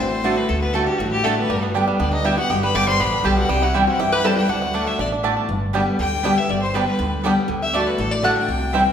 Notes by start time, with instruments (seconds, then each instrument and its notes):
0.00 upright bass A1, steel-string acoustic guitar A2, resonator guitar played with a steel bar C4, fiddle C5
0.23 steel-string acoustic guitar D3 A3 D4 F#4, mandolin A3 F#4 D5 A5
0.37 resonator guitar played with a steel bar B3, fiddle B4
0.49 upright bass D2, steel-string acoustic guitar D3, resonator guitar played with a steel bar A3, fiddle A4
0.61 resonator guitar played with a steel bar B3, fiddle B4
0.73 steel-string acoustic guitar D3 A3 D4 F#4, mandolin A3 F#4 D5 A5, resonator guitar played with a steel bar A3, fiddle A4
0.86 resonator guitar played with a steel bar G3, steel-string acoustic guitar D4 F#4, fiddle G4
0.98 upright bass A1, steel-string acoustic guitar A2, resonator guitar played with a steel bar F#3, fiddle F#4
1.11 resonator guitar played with a steel bar G3, fiddle G4
1.24 steel-string acoustic guitar D3 A3 D4 F#4, resonator guitar played with a steel bar A3, mandolin A3 F#4 D5 A5, fiddle A4
1.36 resonator guitar played with a steel bar B3, fiddle B4
1.49 upright bass G1, steel-string acoustic guitar G2, five-string banjo G3
1.63 five-string banjo B3
1.74 steel-string acoustic guitar D3 G3 B3 G4, mandolin B3 G4 D5 G5, five-string banjo D4
1.88 five-string banjo G3
1.99 upright bass D2, steel-string acoustic guitar D3, five-string banjo B3, resonator guitar played with a steel bar D4, fiddle D5
2.12 five-string banjo D4, resonator guitar played with a steel bar D#4, fiddle D#5
2.24 steel-string acoustic guitar D3 G3 B3 G4, five-string banjo G3, mandolin B3 G4 D5 G5, resonator guitar played with a steel bar E4, fiddle E5
2.37 five-string banjo B3, steel-string acoustic guitar B3 G4, resonator guitar played with a steel bar F#4, fiddle F#5
2.49 upright bass G1, steel-string acoustic guitar G2, five-string banjo B3, resonator guitar played with a steel bar G4, fiddle G5
2.62 five-string banjo G3, resonator guitar played with a steel bar B4, fiddle B5
2.74 upright bass G1, steel-string acoustic guitar D3 G3 B3 G4, mandolin B3 G4 D5 G5, five-string banjo D4, resonator guitar played with a steel bar D5, fiddle D6
2.88 five-string banjo G3, resonator guitar played with a steel bar C5, fiddle C6
3.00 upright bass A1, steel-string acoustic guitar D3, five-string banjo B3, resonator guitar played with a steel bar B4, fiddle B5
3.12 five-string banjo D4
3.23 upright bass B1, steel-string acoustic guitar D3 G3 B3 G4, mandolin B3 G4 D5 G5, five-string banjo G4, resonator guitar played with a steel bar A4, fiddle A5
3.37 five-string banjo B3, resonator guitar played with a steel bar F#4, fiddle F#5
3.49 upright bass C2, steel-string acoustic guitar C3, five-string banjo G3, resonator guitar played with a steel bar G4, fiddle G5
3.62 five-string banjo E4, resonator guitar played with a steel bar F#4, fiddle F#5
3.73 steel-string acoustic guitar E3 G3 C4 E4, five-string banjo G3, mandolin C4 E4 C5 G5, resonator guitar played with a steel bar D4, fiddle D5
3.87 five-string banjo C4, resonator guitar played with a steel bar F#4, fiddle F#5
3.99 upright bass G2, steel-string acoustic guitar G2, five-string banjo E4, resonator guitar played with a steel bar G4, fiddle G5
4.12 five-string banjo G4, resonator guitar played with a steel bar B4, fiddle B5
4.24 steel-string acoustic guitar E3 G3 C4 E4, five-string banjo G3, mandolin C4 E4 C5 G5, resonator guitar played with a steel bar A4, fiddle A5
4.36 five-string banjo E3, steel-string acoustic guitar C4 E4, resonator guitar played with a steel bar G4, fiddle G5
4.49 upright bass D2, steel-string acoustic guitar D3, five-string banjo D4, resonator guitar played with a steel bar F#4, fiddle F#5
4.62 five-string banjo A3
4.73 steel-string acoustic guitar D3 A3 D4 F#4, mandolin A3 F#4 D5 A5, five-string banjo D4
4.87 five-string banjo A3, resonator guitar played with a steel bar E4, fiddle E5
4.99 upright bass A1, steel-string acoustic guitar B2, resonator guitar played with a steel bar D4, five-string banjo D4, fiddle D5
5.12 five-string banjo D4
5.23 steel-string acoustic guitar A2, mandolin A3 F#4 D5 A5, five-string banjo D4
5.37 five-string banjo D4
5.49 upright bass G1, steel-string acoustic guitar G2
5.73 steel-string acoustic guitar D3 G3 B3 G4, five-string banjo G3 B3 D4, mandolin B3 G4 D5 G5
5.99 upright bass D2, steel-string acoustic guitar D3, fiddle G5, resonator guitar played with a steel bar G5
6.23 steel-string acoustic guitar D3 G3 B3 G4, five-string banjo G3 B3 D4, mandolin B3 G4 D5 G5
6.36 steel-string acoustic guitar B3 G4, resonator guitar played with a steel bar E5, fiddle E5
6.49 upright bass G1, steel-string acoustic guitar G2, fiddle D5, resonator guitar played with a steel bar D5
6.62 fiddle C5, resonator guitar played with a steel bar C5
6.74 steel-string acoustic guitar D3 G3 B3 G4, five-string banjo G3 B3 D4, mandolin B3 G4 D5 G5, fiddle B4, resonator guitar played with a steel bar B4
6.87 fiddle B4, resonator guitar played with a steel bar B4
6.99 upright bass D2, steel-string acoustic guitar D3
7.24 steel-string acoustic guitar D3 G3 B3 G4, five-string banjo G3 B3 D4, mandolin B3 G4 D5 G5
7.48 upright bass D2, steel-string acoustic guitar D3
7.62 resonator guitar played with a steel bar E5, fiddle E5
7.73 steel-string acoustic guitar D3 A3 D4 F#4, mandolin A3 F#4 D5 A5, five-string banjo A3 D4, fiddle D5, resonator guitar played with a steel bar D5
7.86 resonator guitar played with a steel bar B4, fiddle B4
7.98 upright bass A1, steel-string acoustic guitar A2, resonator guitar played with a steel bar A4, fiddle A4
8.11 resonator guitar played with a steel bar D5, fiddle D5
8.22 steel-string acoustic guitar D3 A3 D4 F#4, mandolin A3 F#4 D5 A5, five-string banjo A3 D4, resonator guitar played with a steel bar F#5, fiddle F#5
8.36 resonator guitar played with a steel bar G5, fiddle G5
8.48 upright bass C2, steel-string acoustic guitar C3
8.73 steel-string acoustic guitar E3 G3 C4 E4, five-string banjo G3 C4 E4, mandolin C4 E4 C5 G5